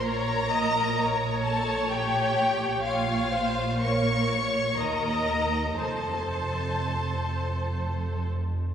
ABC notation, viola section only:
X:1
M:3/4
L:1/8
Q:1/4=61
K:Bbm
V:1 name="Viola section"
d e d4 | d c B d e2 | c4- c z |]